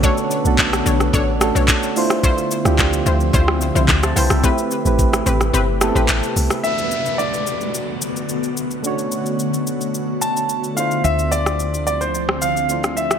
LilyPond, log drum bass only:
\new Staff \with { instrumentName = "Log drum bass" } { \clef bass \time 4/4 \key b \phrygian \tempo 4 = 109 r8. b,,8. b,,8 a,,8. b,,16 r4 | r8. d,8. d,8 d,8. c,16 d,8 c,16 c,16 | r8. a,,8. a,,8 g,,8. a,,16 a,,16 r16 c,16 r16 | r1 |
r1 | r1 | }